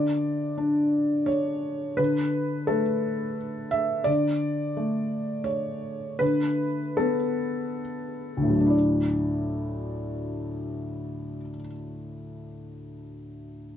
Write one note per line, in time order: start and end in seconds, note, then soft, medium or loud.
0.00 1.95 D3 soft
0.00 1.28 D5 medium
0.58 2.81 D4 soft
1.26 1.98 C#5 medium
1.97 4.02 D3 soft
1.97 2.67 B4 medium
2.67 4.06 A3 soft
2.67 3.36 A4 medium
3.71 4.06 E5 medium
4.04 6.17 D3 soft
4.04 5.46 D5 medium
4.77 7.16 A3 soft
5.44 6.19 C#5 medium
6.19 8.68 D3 soft
6.19 6.98 B4 medium
6.97 8.72 B3 soft
6.97 7.81 A4 medium
8.37 11.37 D2 soft
8.42 11.42 A2 soft
8.49 11.49 F#3 soft
8.55 11.54 A3 soft
8.60 11.60 D4 soft
8.67 11.66 E4 soft
8.67 11.70 D5 soft